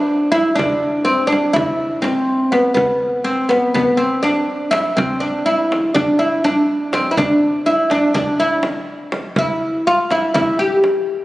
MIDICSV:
0, 0, Header, 1, 3, 480
1, 0, Start_track
1, 0, Tempo, 487805
1, 571, Time_signature, 9, 3, 24, 8
1, 11068, End_track
2, 0, Start_track
2, 0, Title_t, "Oud"
2, 0, Program_c, 0, 24
2, 0, Note_on_c, 0, 62, 84
2, 307, Note_off_c, 0, 62, 0
2, 311, Note_on_c, 0, 64, 102
2, 541, Note_off_c, 0, 64, 0
2, 545, Note_on_c, 0, 62, 97
2, 1025, Note_off_c, 0, 62, 0
2, 1029, Note_on_c, 0, 60, 86
2, 1247, Note_off_c, 0, 60, 0
2, 1251, Note_on_c, 0, 62, 82
2, 1505, Note_off_c, 0, 62, 0
2, 1509, Note_on_c, 0, 64, 93
2, 1988, Note_on_c, 0, 60, 86
2, 2014, Note_off_c, 0, 64, 0
2, 2475, Note_off_c, 0, 60, 0
2, 2479, Note_on_c, 0, 59, 78
2, 2688, Note_off_c, 0, 59, 0
2, 2700, Note_on_c, 0, 59, 83
2, 3192, Note_on_c, 0, 60, 84
2, 3209, Note_off_c, 0, 59, 0
2, 3423, Note_off_c, 0, 60, 0
2, 3433, Note_on_c, 0, 59, 76
2, 3672, Note_off_c, 0, 59, 0
2, 3684, Note_on_c, 0, 59, 86
2, 3909, Note_on_c, 0, 60, 76
2, 3934, Note_off_c, 0, 59, 0
2, 4155, Note_off_c, 0, 60, 0
2, 4159, Note_on_c, 0, 62, 84
2, 4630, Note_off_c, 0, 62, 0
2, 4634, Note_on_c, 0, 64, 90
2, 4883, Note_off_c, 0, 64, 0
2, 4887, Note_on_c, 0, 60, 79
2, 5116, Note_off_c, 0, 60, 0
2, 5120, Note_on_c, 0, 62, 74
2, 5366, Note_off_c, 0, 62, 0
2, 5370, Note_on_c, 0, 64, 82
2, 5846, Note_off_c, 0, 64, 0
2, 5850, Note_on_c, 0, 62, 90
2, 6086, Note_off_c, 0, 62, 0
2, 6090, Note_on_c, 0, 64, 72
2, 6337, Note_off_c, 0, 64, 0
2, 6341, Note_on_c, 0, 62, 82
2, 6821, Note_off_c, 0, 62, 0
2, 6825, Note_on_c, 0, 60, 74
2, 6994, Note_off_c, 0, 60, 0
2, 6998, Note_on_c, 0, 64, 62
2, 7058, Note_off_c, 0, 64, 0
2, 7065, Note_on_c, 0, 62, 83
2, 7534, Note_off_c, 0, 62, 0
2, 7538, Note_on_c, 0, 64, 78
2, 7758, Note_off_c, 0, 64, 0
2, 7783, Note_on_c, 0, 62, 78
2, 8002, Note_off_c, 0, 62, 0
2, 8014, Note_on_c, 0, 62, 85
2, 8258, Note_off_c, 0, 62, 0
2, 8262, Note_on_c, 0, 64, 71
2, 8480, Note_off_c, 0, 64, 0
2, 9235, Note_on_c, 0, 64, 74
2, 9709, Note_off_c, 0, 64, 0
2, 9713, Note_on_c, 0, 65, 79
2, 9947, Note_off_c, 0, 65, 0
2, 9951, Note_on_c, 0, 64, 78
2, 10166, Note_off_c, 0, 64, 0
2, 10178, Note_on_c, 0, 64, 88
2, 10417, Note_off_c, 0, 64, 0
2, 10421, Note_on_c, 0, 67, 84
2, 10641, Note_off_c, 0, 67, 0
2, 11068, End_track
3, 0, Start_track
3, 0, Title_t, "Frame drum"
3, 339, Note_on_c, 9, 64, 65
3, 437, Note_off_c, 9, 64, 0
3, 583, Note_on_c, 9, 64, 87
3, 681, Note_off_c, 9, 64, 0
3, 1304, Note_on_c, 9, 64, 61
3, 1402, Note_off_c, 9, 64, 0
3, 1537, Note_on_c, 9, 64, 94
3, 1636, Note_off_c, 9, 64, 0
3, 2008, Note_on_c, 9, 64, 75
3, 2106, Note_off_c, 9, 64, 0
3, 2487, Note_on_c, 9, 64, 62
3, 2586, Note_off_c, 9, 64, 0
3, 2724, Note_on_c, 9, 64, 82
3, 2822, Note_off_c, 9, 64, 0
3, 3453, Note_on_c, 9, 64, 66
3, 3551, Note_off_c, 9, 64, 0
3, 3692, Note_on_c, 9, 64, 85
3, 3790, Note_off_c, 9, 64, 0
3, 4173, Note_on_c, 9, 64, 69
3, 4272, Note_off_c, 9, 64, 0
3, 4652, Note_on_c, 9, 64, 76
3, 4750, Note_off_c, 9, 64, 0
3, 4903, Note_on_c, 9, 64, 93
3, 5001, Note_off_c, 9, 64, 0
3, 5628, Note_on_c, 9, 64, 76
3, 5727, Note_off_c, 9, 64, 0
3, 5862, Note_on_c, 9, 64, 81
3, 5960, Note_off_c, 9, 64, 0
3, 6341, Note_on_c, 9, 64, 76
3, 6439, Note_off_c, 9, 64, 0
3, 6819, Note_on_c, 9, 64, 81
3, 6917, Note_off_c, 9, 64, 0
3, 7059, Note_on_c, 9, 64, 89
3, 7158, Note_off_c, 9, 64, 0
3, 7773, Note_on_c, 9, 64, 62
3, 7872, Note_off_c, 9, 64, 0
3, 8019, Note_on_c, 9, 64, 78
3, 8118, Note_off_c, 9, 64, 0
3, 8490, Note_on_c, 9, 64, 67
3, 8589, Note_off_c, 9, 64, 0
3, 8976, Note_on_c, 9, 64, 62
3, 9074, Note_off_c, 9, 64, 0
3, 9212, Note_on_c, 9, 64, 78
3, 9311, Note_off_c, 9, 64, 0
3, 9944, Note_on_c, 9, 64, 60
3, 10042, Note_off_c, 9, 64, 0
3, 10188, Note_on_c, 9, 64, 88
3, 10287, Note_off_c, 9, 64, 0
3, 10664, Note_on_c, 9, 64, 69
3, 10762, Note_off_c, 9, 64, 0
3, 11068, End_track
0, 0, End_of_file